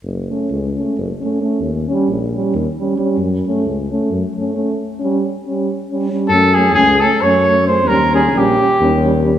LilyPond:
<<
  \new Staff \with { instrumentName = "Trumpet" } { \time 7/8 \tempo 4 = 134 r2. r8 | r2. r8 | r2. r8 | r2. r8 |
a'8 gis'8 gis'8 a'8 cis''4 bis'8 | ais'8 gis'8 g'4. r4 | }
  \new Staff \with { instrumentName = "French horn" } { \time 7/8 r8 cis'8 r8 cis'8 r8 cis'8 cis'8 | r8 cis'8 r8 cis'8 r8 cis'8 cis'8 | r8 cis'8 r8 cis'8 r8 cis'8 cis'8 | r8 cis'8 r8 cis'8 r8 cis'8 cis'8 |
cis'8 cis'8 cis'8 cis'8 cis'8 cis'8 cis'8 | cis'8 cis'8 cis'8 cis'8 cis'8 cis'8 cis'8 | }
  \new Staff \with { instrumentName = "Euphonium" } { \clef bass \time 7/8 r8 a8 r8 a8 r8 a8 a8 | r8 g8 r8 g8 r8 g8 g8 | r8 a8 r8 a8 r8 a8 a8 | r8 g8 r8 g8 r8 g8 g8 |
a8 a8 a8 a8 a8 a8 a8 | g8 g8 g8 g8 g8 g8 g8 | }
  \new Staff \with { instrumentName = "Tuba" } { \clef bass \time 7/8 fis,,4 cis,4 fis,,8 r4 | dis,4 ais,,4 dis,8 r4 | fis,4 cis,4 fis,8 r4 | r2. r8 |
fis,4 cis,4 fis,4. | dis,4 ais,,4 dis,4. | }
>>